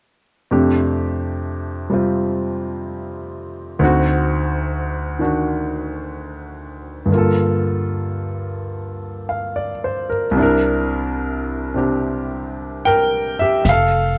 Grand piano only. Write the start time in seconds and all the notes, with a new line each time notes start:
0.51 F2 C3 A3 D4 G4
1.90 C3 G3 C4 F4
3.79 D2 D3 C4 D#4
3.84 F#4
5.19 D#3 D4 F#4
7.06 G2 D3
7.12 A#3 F4
7.18 A4
9.29 F5
9.56 D5
9.84 C5
10.10 A#4
10.31 C2 C3
10.37 D4 E4
10.42 A#4
11.74 C3 C4 D4 G4
12.85 A#4 G5
13.39 G4 E5
13.64 E5
13.69 A4 F5